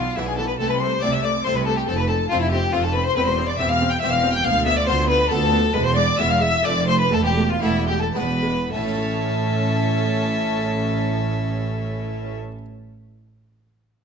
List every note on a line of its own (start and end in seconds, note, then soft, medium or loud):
0.00 0.12 B1 medium
0.00 0.12 B2 medium
0.00 0.17 F4 medium
0.00 0.17 F5 loud
0.16 0.55 B1 medium
0.16 0.55 B2 medium
0.16 0.52 B2 medium
0.16 0.25 E3 medium
0.16 0.48 B3 medium
0.16 0.49 D4 medium
0.16 0.28 E4 medium
0.16 0.22 E4 medium
0.16 0.49 E4 medium
0.16 0.28 E5 medium
0.26 0.36 G#4 medium
0.26 0.38 G#4 medium
0.26 0.38 G#5 medium
0.37 0.46 E3 medium
0.37 0.47 A4 medium
0.37 0.42 A4 medium
0.37 0.48 A5 loud
0.48 0.52 B4 medium
0.48 0.59 B4 medium
0.48 0.60 B5 medium
0.58 0.98 C2 medium
0.58 0.97 C3 medium
0.58 0.95 C3 medium
0.58 0.68 A3 medium
0.58 0.69 A4 medium
0.58 0.69 A5 loud
0.68 0.80 B4 medium
0.68 0.74 B4 medium
0.68 0.81 B5 loud
0.79 0.90 A3 medium
0.79 1.04 C5 medium
0.79 1.02 C5 medium
0.79 1.01 C6 loud
1.01 1.40 C2 medium
1.01 1.37 C3 medium
1.01 1.41 C3 medium
1.01 1.10 A3 medium
1.01 1.33 A3 medium
1.01 1.34 C4 soft
1.01 1.34 E4 medium
1.01 1.12 D5 medium
1.01 1.15 D5 medium
1.01 1.12 D6 loud
1.12 1.23 E5 medium
1.12 1.22 E5 medium
1.12 1.24 E6 medium
1.22 1.32 A3 medium
1.22 1.44 D5 loud
1.22 1.31 D5 medium
1.22 1.45 D6 loud
1.43 1.83 C2 medium
1.43 1.83 C3 medium
1.43 1.81 C3 medium
1.43 1.53 A3 medium
1.43 1.77 A3 medium
1.43 1.77 C4 medium
1.43 1.77 E4 medium
1.43 1.55 C5 medium
1.43 1.57 C5 medium
1.43 1.56 C6 loud
1.55 1.66 B4 medium
1.55 1.67 B5 medium
1.65 1.76 A3 medium
1.65 1.76 A4 medium
1.65 1.77 A5 loud
1.77 1.81 G4 medium
1.77 1.88 G4 medium
1.77 1.89 G5 medium
1.86 2.25 F1 medium
1.86 2.26 F2 medium
1.86 2.23 F2 medium
1.86 1.96 C4 medium
1.86 1.97 A4 loud
1.86 1.97 A4 medium
1.86 1.99 A5 loud
1.96 2.08 B4 medium
1.96 2.10 B5 loud
2.07 2.17 C4 medium
2.07 2.29 A4 medium
2.07 2.17 A4 medium
2.07 2.31 A5 loud
2.29 2.69 F1 medium
2.29 2.68 F2 medium
2.29 2.66 F2 medium
2.29 2.62 A3 medium
2.29 2.62 C4 medium
2.29 2.39 C4 medium
2.29 2.40 F4 medium
2.29 2.62 F4 medium
2.29 2.36 F5 loud
2.39 2.51 E4 medium
2.44 2.53 E5 medium
2.49 2.72 G4 medium
2.49 2.74 G4 medium
2.49 2.74 G5 loud
2.53 2.61 C4 medium
2.72 3.11 F1 medium
2.72 3.08 F2 medium
2.72 3.11 F2 medium
2.72 3.05 A3 medium
2.72 2.82 C4 medium
2.72 3.05 C4 medium
2.72 2.83 F4 medium
2.72 2.84 F4 medium
2.72 3.05 F4 medium
2.72 2.84 F5 medium
2.83 2.94 A4 medium
2.83 2.95 A5 loud
2.93 3.03 C4 medium
2.93 3.05 B4 medium
2.93 2.98 B4 medium
2.93 3.06 B5 loud
3.03 3.15 C5 medium
3.03 3.16 C5 medium
3.08 3.17 C6 loud
3.16 3.54 E1 medium
3.16 3.54 E2 medium
3.16 3.51 E2 medium
3.16 3.24 C4 medium
3.16 3.27 B4 loud
3.16 3.25 B4 loud
3.16 3.27 B5 loud
3.26 3.49 C5 medium
3.26 3.34 C5 medium
3.26 3.49 C6 loud
3.38 3.46 C4 medium
3.47 3.57 D5 medium
3.47 3.54 D5 medium
3.47 3.60 D6 loud
3.58 3.97 E1 medium
3.58 3.97 E2 medium
3.58 3.95 E2 medium
3.58 3.67 C4 medium
3.58 3.91 C4 medium
3.58 3.91 G4 medium
3.58 3.71 E5 loud
3.58 3.70 E5 loud
3.58 3.70 E6 loud
3.69 3.91 F5 medium
3.69 3.91 F5 loud
3.69 3.92 F6 loud
3.81 3.89 C4 medium
3.90 4.00 G5 medium
3.90 4.02 G5 medium
3.90 4.03 G6 loud
4.00 4.40 E1 medium
4.00 4.40 E2 loud
4.00 4.37 E2 medium
4.00 4.10 C4 medium
4.00 4.34 C4 medium
4.00 4.34 G4 medium
4.00 4.12 E5 loud
4.00 4.11 E5 loud
4.00 4.13 E6 loud
4.11 4.33 F5 loud
4.11 4.32 F5 loud
4.11 4.34 F6 loud
4.23 4.31 C4 medium
4.33 4.46 G5 loud
4.33 4.44 G5 loud
4.33 4.46 G6 loud
4.44 4.82 D2 loud
4.44 4.83 D2 loud
4.44 4.80 D2 medium
4.44 4.53 B3 medium
4.44 4.66 F5 loud
4.44 4.65 F5 loud
4.44 4.67 F6 loud
4.65 4.74 B3 medium
4.65 4.76 E5 loud
4.65 4.78 E5 medium
4.65 4.77 E6 loud
4.76 4.87 D5 loud
4.76 4.88 D5 medium
4.76 4.89 D6 loud
4.86 5.26 D2 medium
4.86 5.23 D2 medium
4.86 5.19 A3 medium
4.86 4.95 B3 medium
4.86 5.20 B3 medium
4.86 5.20 F4 medium
4.86 4.94 C5 loud
4.86 5.09 C5 loud
4.86 5.08 C6 loud
5.08 5.16 B3 medium
5.08 5.30 B4 loud
5.08 5.31 B4 loud
5.08 5.30 B5 loud
5.29 5.66 D2 medium
5.29 5.69 D2 medium
5.29 5.62 A3 medium
5.29 5.38 B3 medium
5.29 5.62 B3 medium
5.29 5.62 F4 medium
5.29 5.73 A4 loud
5.29 5.75 A4 loud
5.29 5.74 A5 loud
5.52 5.60 B3 medium
5.74 6.14 E1 loud
5.74 6.13 E2 loud
5.74 6.10 E2 medium
5.74 5.82 G#3 medium
5.74 5.85 B4 loud
5.74 5.85 B5 loud
5.85 5.96 C5 loud
5.85 5.96 C5 medium
5.85 5.97 C6 loud
5.94 6.04 G#3 medium
5.94 6.17 D5 loud
5.94 6.20 D5 medium
5.94 6.19 D6 loud
6.18 6.59 E1 medium
6.18 6.58 E2 medium
6.18 6.56 E2 medium
6.18 6.26 G#3 medium
6.18 6.51 G#3 medium
6.18 6.52 B3 medium
6.18 6.52 E4 medium
6.18 6.29 E5 loud
6.18 6.32 E5 loud
6.18 6.30 E6 loud
6.29 6.41 F5 loud
6.29 6.43 F5 medium
6.29 6.42 F6 loud
6.39 6.48 G#3 medium
6.39 6.63 E5 loud
6.39 6.67 E5 loud
6.39 6.65 E6 loud
6.63 7.06 F1 loud
6.63 7.06 F2 loud
6.63 7.03 F2 medium
6.63 6.71 A3 medium
6.63 7.08 A3 medium
6.63 7.08 C4 medium
6.63 6.87 D5 loud
6.63 6.88 D5 loud
6.63 6.88 D6 loud
6.86 6.94 A3 medium
6.86 6.99 C5 loud
6.86 7.00 C5 loud
6.86 6.99 C6 loud
6.99 7.11 B4 medium
6.99 7.15 B4 loud
6.99 7.12 B5 loud
7.11 7.56 E1 loud
7.11 7.56 E2 medium
7.11 7.53 E2 medium
7.11 7.19 A3 medium
7.11 7.24 A4 loud
7.11 7.25 A4 loud
7.11 7.18 A5 loud
7.22 7.48 G4 medium
7.22 7.52 G4 medium
7.22 7.34 G5 loud
7.35 7.43 A3 medium
7.49 7.62 F4 medium
7.49 7.62 F5 loud
7.61 8.09 E1 medium
7.61 8.09 E2 medium
7.61 8.06 E2 medium
7.61 7.69 A3 medium
7.61 8.01 A3 medium
7.61 8.01 B3 medium
7.61 8.01 D4 medium
7.61 7.87 E4 medium
7.61 7.88 E4 medium
7.61 7.88 E5 loud
7.87 7.95 A3 medium
7.87 7.92 G4 medium
7.87 8.02 G4 medium
7.87 8.01 G5 loud
7.99 8.05 A4 medium
7.99 8.08 A4 medium
7.99 8.15 A5 medium
8.14 8.66 E1 medium
8.14 8.63 E2 medium
8.14 8.66 E2 medium
8.14 8.23 G#3 medium
8.14 8.69 G#3 medium
8.14 8.69 B3 medium
8.14 8.70 D4 medium
8.14 8.71 B4 medium
8.14 8.72 B4 medium
8.14 8.72 B5 loud
8.43 8.51 G#3 medium
8.71 12.37 A1 medium
8.71 12.37 A2 medium
8.71 12.38 A2 medium
8.71 12.36 C#4 medium
8.71 12.35 A4 medium
8.71 12.36 E5 medium
8.71 12.36 A5 loud
8.81 12.44 A3 medium
8.88 12.51 C#4 medium
8.95 12.58 E4 medium
9.02 12.65 C#5 medium